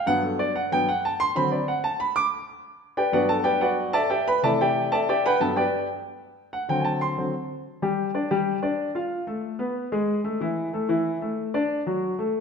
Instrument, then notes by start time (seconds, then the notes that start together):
grand piano
0.06 G2 F#3 B3 F#5
0.23 A4
0.39 D5
0.56 F#5
0.72 G2 F#3 B3 G5
0.89 F#5
1.05 A5
1.20 C6
1.35 D3 F#3 C4 B5
1.52 D5
1.68 F#5
1.84 A5
2.00 B5
2.16 D6
2.97 G4 B4 D5 G5
3.12 G2 F#3 B3 F#4 B4 D5 F#5
3.29 A4 A5
3.44 G4 B4 D5 G5
3.61 F#4 B4 D5 F#5
3.93 A4 D5 E5 A5
4.10 G4 D5 E5 G5
4.28 B4 B5
4.43 C3 E3 A3 A4 D5 E5 A5
4.61 G4 D5 E5 G5
4.92 A4 D5 E5 A5
5.09 G4 D5 E5 G5
5.26 B4 F#5 G5 B5
5.40 G2 F#3 B3 A4 A5
5.56 G4 B4 D5 G5
6.53 F#5
6.69 D3 F#3 C4 G5
6.80 G#5
6.85 A5
7.01 C6
7.18 D3 F#3 C4
7.82 G3 G4
8.14 D4 D5
8.31 G3 G4
8.62 D4 D5
8.95 F4 F5
9.27 A3 A4
9.59 B3 B4
9.92 G#3 G#4
10.24 A3 A4
10.41 E3 E4
10.73 A3 A4
10.89 E3 E4
11.21 A3 A4
11.54 D4 D5
11.87 F#3 F#4
12.19 A3 A4